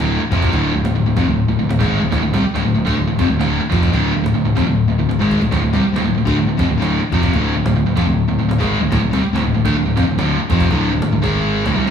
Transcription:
0.00 D1 D2 A2 D3, cajon slap
0.20 muted overdriven electric guitar stroke, muted picked electric bass stroke, muted distorted electric guitar stroke, cajon slap
0.31 F1 F2 C3 F3, cajon bass, cajon slap
0.43 cajon bass
0.51 D1 D2 A2 D3, cajon bass
0.62 cajon slap
0.73 D1 D2 A2
0.84 D1 D2 A2, cajon slap
0.94 D1 D2 A2
1.05 D1 D2 A2
1.17 F1 F2 C3, cajon bass
1.26 D1 D2 A2, cajon slap
1.47 D1 D2 A2, cajon slap
1.59 D1 D2 A2, cajon slap
1.69 D1 D2 A2, cajon slap
1.80 G#1 G#2 D#3 G#3, cajon bass
1.92 cajon slap
2.02 D1 D2 A2
2.12 D1 D2 A2, cajon bass
2.23 D1 D2 A2
2.34 C2 C3 G3, cajon bass
2.44 muted distorted electric guitar stroke, muted overdriven electric guitar stroke, muted picked electric bass stroke
2.55 D1 D2 A2, cajon slap
2.64 D1 D2 A2
2.75 D1 D2 A2
2.86 D2 D3 A3, cajon bass
2.97 D1 D2 A2, cajon slap
3.08 D1 D2 A2
3.19 F1 F2 C3, cajon bass
3.29 D1 D2 A2
3.40 D1 D2 A2 D3, cajon slap
3.61 muted distorted electric guitar stroke, muted overdriven electric guitar stroke, muted picked electric bass stroke, cajon slap
3.71 F1 F2 C3 F3, cajon bass
3.83 cajon bass
3.92 D1 D2 A2 D3, cajon bass
4.14 D1 D2 A2
4.24 D1 D2 A2, cajon slap
4.35 D1 D2 A2
4.45 D1 D2 A2, cajon slap
4.55 F1 F2 C3, cajon bass
4.66 D1 D2 A2, cajon slap
4.88 D1 D2 A2, cajon slap
4.98 D1 D2 A2
5.09 D1 D2 A2, cajon slap
5.19 G#1 G#2 D#3 G#3, cajon slap
5.31 cajon bass
5.41 D1 D2 A2, cajon bass
5.51 D1 D2 A2, cajon bass
5.62 D1 D2 A2
5.73 C2 C3 G3, cajon bass
5.83 muted picked electric bass stroke, muted overdriven electric guitar stroke, muted distorted electric guitar stroke
5.92 D1 D2 A2, cajon slap
6.04 D1 D2 A2
6.15 D1 D2 A2, cajon slap
6.25 D2 D3 A3, cajon bass
6.36 D1 D2 A2, cajon slap
6.47 D1 D2 A2
6.57 F1 F2 C3, cajon bass
6.68 D1 D2 A2, cajon slap
6.78 D1 D2 A2 D3
6.82 cajon slap
7.00 muted overdriven electric guitar stroke, muted picked electric bass stroke, muted distorted electric guitar stroke, cajon slap
7.12 F1 F2 C3 F3, cajon bass, cajon slap
7.23 cajon bass
7.33 D1 D2 A2 D3, cajon bass
7.54 D1 D2 A2
7.65 D1 D2 A2, cajon slap
7.75 D1 D2 A2
7.86 D1 D2 A2, cajon slap
7.96 F1 F2 C3, cajon bass
8.07 D1 D2 A2, cajon slap
8.28 D1 D2 A2, cajon slap
8.39 D1 D2 A2
8.49 D1 D2 A2, cajon slap
8.58 G#1 G#2 D#3 G#3, cajon bass
8.72 cajon slap
8.80 D1 D2 A2, cajon slap
8.91 D1 D2 A2, cajon bass
9.00 D1 D2 A2
9.11 C2 C3 G3, cajon bass
9.23 muted overdriven electric guitar stroke, muted picked electric bass stroke, muted distorted electric guitar stroke
9.33 D1 D2 A2, cajon slap
9.44 D1 D2 A2
9.54 D1 D2 A2, cajon slap
9.65 D2 D3 A3, cajon bass
9.75 D1 D2 A2, cajon slap
9.86 D1 D2 A2
9.97 F1 F2 C3, cajon bass
10.07 D1 D2 A2
10.19 D1 D2 A2 D3, cajon slap
10.38 muted distorted electric guitar stroke, muted picked electric bass stroke, muted overdriven electric guitar stroke, cajon slap
10.50 F1 F2 C3 F3, cajon bass
10.60 cajon bass
10.71 D1 D2 A2 D3, cajon bass
10.92 D1 D2 A2
11.02 D1 D2 A2, cajon slap
11.12 D1 D2 A2
11.22 G#1 G#2 D#3 G#3, cajon bass
11.44 cajon slap
11.65 D1 D2 A2, cajon bass
11.76 C2 C3 G3
11.86 F2 C3 F3, cajon slap

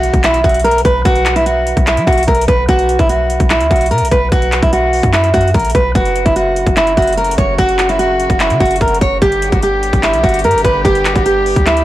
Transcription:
Already playing: B1 F#4, impact
0.03 closed hi-hat
0.13 B1, kick, closed hi-hat
0.24 E4, clap, closed hi-hat
0.34 closed hi-hat
0.44 B1 F#4, kick, closed hi-hat
0.49 closed hi-hat
0.54 closed hi-hat
0.59 closed hi-hat
0.64 A#4, closed hi-hat
0.71 closed hi-hat
0.78 closed hi-hat
0.85 B1 B4, kick, closed hi-hat
1.05 B1 F#4, kick, closed hi-hat
1.16 closed hi-hat
1.26 clap, closed hi-hat
1.36 E4, closed hi-hat
1.46 F#4, closed hi-hat
1.67 closed hi-hat
1.77 B1, kick, closed hi-hat
1.87 E4, clap, closed hi-hat
1.97 F#3, closed hi-hat
2.07 B1 F#4, kick, closed hi-hat
2.13 closed hi-hat
2.18 closed hi-hat
2.23 closed hi-hat
2.27 B1 A#4, kick, closed hi-hat
2.35 closed hi-hat
2.41 closed hi-hat
2.48 B1 B4, kick, closed hi-hat
2.69 B1 F#4, kick, closed hi-hat
2.79 closed hi-hat
2.89 closed hi-hat
2.99 B1 E4, kick, closed hi-hat
3.09 F#4, closed hi-hat
3.30 closed hi-hat
3.40 B1, kick, closed hi-hat
3.50 E4, clap, closed hi-hat
3.60 D2, closed hi-hat
3.71 B1 F#4, kick, closed hi-hat
3.76 closed hi-hat
3.81 closed hi-hat
3.86 closed hi-hat
3.91 B2 A#4, closed hi-hat
3.98 B1, closed hi-hat
4.05 closed hi-hat
4.11 B1 B4, kick, closed hi-hat
4.32 B1 F#4, kick, closed hi-hat
4.42 closed hi-hat
4.52 clap, closed hi-hat
4.62 B1 E4, kick, closed hi-hat
4.73 F#4, closed hi-hat
4.93 open hi-hat
5.03 F#2, kick, closed hi-hat
5.13 E4, clap, closed hi-hat
5.24 closed hi-hat
5.34 F#2 F#4, kick, closed hi-hat
5.41 closed hi-hat
5.48 closed hi-hat
5.54 A#1 A#4, kick, closed hi-hat
5.59 closed hi-hat
5.65 closed hi-hat
5.70 closed hi-hat
5.75 B1 B4, kick, closed hi-hat
5.95 F#1 C#3 F#3 A#3 F#4, kick, closed hi-hat
6.05 closed hi-hat
6.16 closed hi-hat
6.26 F#1 E4, kick, closed hi-hat
6.36 F#4, closed hi-hat
6.56 closed hi-hat
6.67 F#1, kick, closed hi-hat
6.77 E4, clap, closed hi-hat
6.87 closed hi-hat
6.97 F#1 F#4, kick, closed hi-hat
7.02 closed hi-hat
7.07 closed hi-hat
7.13 closed hi-hat
7.17 A#4, closed hi-hat
7.24 closed hi-hat
7.31 closed hi-hat
7.38 F#1 C#5, kick, closed hi-hat
7.58 F#1 F#4, kick, closed hi-hat
7.69 closed hi-hat
7.79 clap, closed hi-hat
7.89 E4, closed hi-hat
7.99 F#4, closed hi-hat
8.20 closed hi-hat
8.30 F#1, kick, closed hi-hat
8.40 E4, clap, closed hi-hat
8.50 C#3, closed hi-hat
8.60 F#1 F#4, kick, closed hi-hat
8.66 closed hi-hat
8.71 closed hi-hat
8.76 closed hi-hat
8.81 F#1 A#4, kick, closed hi-hat
8.88 closed hi-hat
8.94 closed hi-hat
9.01 F#1 C#5, kick, closed hi-hat
9.22 G1 D3 G3 B3 G4, kick, closed hi-hat
9.32 closed hi-hat
9.42 closed hi-hat
9.52 G1 F#4, kick, closed hi-hat
9.63 G4, closed hi-hat
9.83 closed hi-hat
9.93 G1, kick, closed hi-hat
10.03 E4, clap, closed hi-hat
10.14 B1, closed hi-hat
10.23 G1 F#4, kick, closed hi-hat
10.29 closed hi-hat
10.34 closed hi-hat
10.39 closed hi-hat
10.44 G2 A#4, closed hi-hat
10.51 G1, closed hi-hat
10.58 closed hi-hat
10.64 G1 B4, kick, closed hi-hat
10.85 G1 G4, kick, closed hi-hat
10.95 closed hi-hat
11.05 clap, closed hi-hat
11.15 G1 F#4, kick, closed hi-hat
11.26 G4, closed hi-hat
11.46 open hi-hat
11.56 D2, kick, closed hi-hat
11.67 E4, clap, closed hi-hat
11.77 closed hi-hat

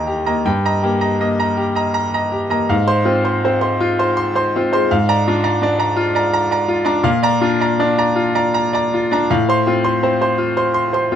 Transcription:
Already playing: D#2 A#3 G4 D#5 G5 A#5
0.07 G4
0.26 A#3 D#5 A#5
0.45 G2 G5
0.65 D#5 A#5
0.83 A#3 G4
1.01 D#5 A#5
1.20 A#3 D#5
1.39 D#5 A#5
1.57 G4
1.75 D#5 A#5
1.94 A#5
2.14 D#5 A#5
2.32 G4
2.50 A#3 D#5 A#5
2.69 G#2 F5
2.88 C5 C6
3.05 C4 F4
3.25 C5 C6
3.45 C4 C5
3.61 C5 C6
3.80 F4
3.99 C5 C6
4.17 C6
4.35 C5 C6
4.56 C4 F4
4.73 G#3 C5 C6
4.91 G#2 F5
5.09 D5 A#5
5.28 D4 F4
5.44 D5 A#5
5.62 D4 D5
5.79 D5 A#5
5.97 F4
6.15 D5 A#5
6.33 A#5
6.51 D5 A#5
6.68 F4
6.85 D4 D5 A#5
7.03 A#2 F5
7.23 D5 A#5
7.41 D4 F4
7.60 D5 A#5
7.79 D4 D5
7.98 D5 A#5
8.16 F4
8.35 D5 A#5
8.54 A#5
8.73 D5 A#5
8.94 F4
9.11 D4 D5 A#5
9.30 A2 F5
9.49 C5 C6
9.67 C4 F4
9.84 C5 C6
10.03 C4 C5
10.21 C5 C6
10.38 F4
10.57 C5 C6
10.74 C6
10.93 C5 C6
11.12 C4 F4

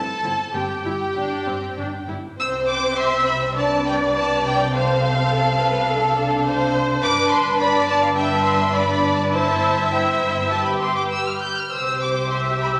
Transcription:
Already playing: A4 A5
0.24 G1 G2 C4 E4
0.54 G1 G2 C4 G4 G5
0.85 G1 G2 E4
1.15 G1 G2 D4
1.47 G1 G2 C4
1.77 G1 G2 D4
2.08 G1 G2 E4
2.38 C2 C3 C4 C5 E6
2.68 D6
2.97 E5 C6
3.26 B5
3.56 D4 B4 D5 A5
3.86 G5
4.16 A5
4.46 G5
4.74 C4 A4 C5 F5
5.31 A4
5.60 B4
5.89 D4 A4
6.46 C5
7.03 G1 G2 D4 B4 D6
7.31 C6
7.60 D4 B4 D5 B5
7.87 A5
8.02 F5
8.15 D4 B4 E5 G5
8.44 C6
8.73 D4 B4 D5 B5
9.16 A5
9.31 E4 C5 E5 A5
9.91 E4 C5 G5
10.49 G4 B4 A5
10.64 B5
10.80 C6
10.96 D6
11.11 E6
11.27 F6
11.42 G6
11.57 F6
11.71 C2 C3 G4 C5 E6
12.02 D6
12.31 E5 C6
12.62 B5

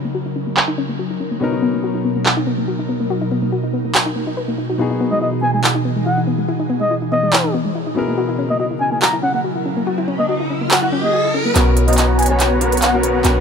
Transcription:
Already playing: B2 C#3 F#3 B3 C#4 D#4 F#4 A#4
0.05 A#3
0.15 F#4
0.26 D#4
0.36 C#4
0.47 A#3
0.57 F#4, clap
0.68 D#4
0.78 C#4
0.89 A#3
0.99 F#4
1.10 D#4
1.20 C#4
1.31 A#3
1.40 B2 B3 C#4 D#4 F#4
1.44 A#4
1.52 D#4
1.62 B3
1.74 A#3
1.84 F#4
1.95 D#4
2.05 B3
2.16 A#3
2.26 F#4, clap
2.37 D#4
2.47 B3
2.58 A#3
2.68 F#4
2.79 D#4
2.89 B3
3.00 A#3
3.10 F#4
3.21 D#4
3.31 B3
3.42 A#3
3.52 F#4
3.64 D#4
3.74 B3
3.85 A#3
3.95 F#4, clap
4.06 D#4
4.16 A#3
4.27 D#4
4.37 B4
4.48 A#3
4.58 D#4
4.69 F#4
4.78 B2 E3 B3 D#4 E4 F#4 G#4
4.91 D#4
5.01 B3
5.12 G#3 D#5
5.22 E4 D#5
5.33 D#4
5.42 B3 G#5
5.54 G#3 G#5
5.64 E4, clap
5.75 D#4
5.85 B3
5.96 G#3
6.06 E4 F#5
6.18 D#4
6.27 B3
6.38 G#3
6.48 E4
6.60 D#4
6.70 B3
6.81 G#3 D#5
6.91 E4
7.02 D#4
7.12 B3 D#5
7.23 G#3
7.33 E4, clap
7.44 D#4
7.54 B3
7.65 G#3
7.75 E4
7.87 D#4
7.94 B2 C#3 F#3 B3 C#4 E4 G#4 A#4
8.08 A#3
8.18 F#4, riser
8.29 E4
8.39 C#4
8.50 A#3 D#5
8.60 F#4 D#5
8.71 E4
8.81 C#4 G#5
8.92 A#3 G#5
9.02 F#4 A#5, clap
9.13 E4
9.23 C#4 F#5
9.34 A#3 F#5
9.44 F#4
9.56 E4
9.66 C#4
9.77 A#3
9.87 F#4
9.98 E4
10.08 C#4
10.19 A#3 D#5
10.29 F#4 D#5
10.40 E4
10.50 C#4
10.61 A#3
10.71 F#4 F#5, clap
10.82 E4 F#5
10.92 C#4
11.03 A#3 D#5
11.13 F#4
11.25 E4
11.34 C#4
11.45 A#3
11.54 B1 B2 D#3 B3 C#4 F#4 A#4 B4 C#5 F#5 A#5, clap, closed hi-hat, riser
11.77 closed hi-hat
11.87 B2 B3 C#4 F#4 B4 C#5 D#5 F#5 A#5, closed hi-hat
11.93 closed hi-hat
11.98 D#5, clap, closed hi-hat
12.19 G#5, closed hi-hat
12.22 closed hi-hat
12.26 B2 B3 G#5, closed hi-hat
12.30 C#4 F#4 B4 C#5 F#5 A#5
12.40 clap, closed hi-hat
12.60 B2 B3 C#4 F#4 A#4 B4 C#5 F#5 A#5, closed hi-hat
12.72 closed hi-hat
12.77 closed hi-hat
12.82 F#5, clap, closed hi-hat
12.92 B2 B3 C#4 F#4 A#4 B4 C#5 F#5 A#5
13.03 closed hi-hat
13.24 B1 B2 B3 C#4 F#4 A#4 B4 C#5 F#5 A#5, clap, closed hi-hat

